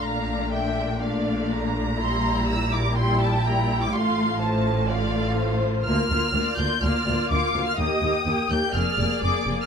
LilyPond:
<<
  \new Staff \with { instrumentName = "Violin section" } { \time 4/4 \key f \major \tempo 4 = 124 bes''4 g''4 f''4. r8 | c'''4 e'''8 d'''8 c'''8 a''8 bes''8. d'''16 | c'''4 a''4 f''4. r8 | \key bes \mixolydian f'''4. g'''8 f'''4 d'''8. f'''16 |
ees'''4. g'''8 f'''4 d'''8. f'''16 | }
  \new Staff \with { instrumentName = "Violin section" } { \time 4/4 \key f \major f''4 e''4 d''4 bes''4~ | bes''2 g''2 | f''4 c''4 d''4 c''4 | \key bes \mixolydian bes'4 d''4 d''4 f''4 |
ees''4 g''4 d''2 | }
  \new Staff \with { instrumentName = "Viola section" } { \time 4/4 \key f \major <a d'>2 <a d'>2 | <g e'>2 <g e'>4 <g e'>4 | <a f'>4 <a f'>4 <a f'>2 | \key bes \mixolydian <bes f'>8 <bes f'>8 <bes f'>8 <bes f'>8 <bes f'>8 <bes f'>8 <bes f'>8 <bes f'>8 |
<bes g'>8 <bes g'>8 <bes g'>8 <bes g'>8 <bes aes'>8 <bes aes'>8 <bes aes'>8 <bes aes'>8 | }
  \new Staff \with { instrumentName = "Cello section" } { \clef bass \time 4/4 \key f \major bes,1~ | bes,1 | a,1 | \key bes \mixolydian d,8 d,8 d,8 d,8 d,8 d,8 d,8 d,8 |
ees,8 ees,8 ees,8 ees,8 f,8 f,8 f,8 f,8 | }
  \new Staff \with { instrumentName = "Double bass section" } { \clef bass \time 4/4 \key f \major bes,,1~ | bes,,1 | a,,1 | \key bes \mixolydian d,8 d,8 d,8 d,8 d,8 d,8 d,8 d,8 |
ees,8 ees,8 ees,8 ees,8 f,,8 f,,8 f,,8 f,,8 | }
>>